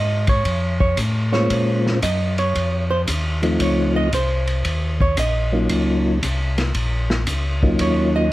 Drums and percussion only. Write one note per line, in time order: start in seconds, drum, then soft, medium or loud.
0.27 kick medium
0.27 ride medium
0.45 kick soft
0.45 ride medium
0.80 kick medium
0.97 kick soft
0.97 hi-hat pedal medium
0.97 ride medium
1.33 snare soft
1.50 kick soft
1.50 ride medium
1.87 snare soft
2.02 kick soft
2.02 hi-hat pedal medium
2.02 ride medium
2.38 ride soft
2.55 kick soft
2.55 ride medium
3.08 kick soft
3.08 hi-hat pedal medium
3.08 ride medium
3.43 ride soft
3.60 kick soft
3.60 ride medium
4.13 kick soft
4.13 hi-hat pedal medium
4.13 ride medium
4.47 ride medium
4.65 kick soft
4.65 ride medium
5.01 kick medium
5.17 kick soft
5.17 hi-hat pedal medium
5.17 ride medium
5.69 kick soft
5.69 ride medium
6.23 kick soft
6.23 hi-hat pedal medium
6.23 ride medium
6.58 snare medium
6.58 ride medium
6.75 kick soft
6.75 ride medium
7.10 snare medium
7.27 kick soft
7.27 hi-hat pedal medium
7.27 ride medium
7.63 kick medium
7.79 kick soft
7.79 ride medium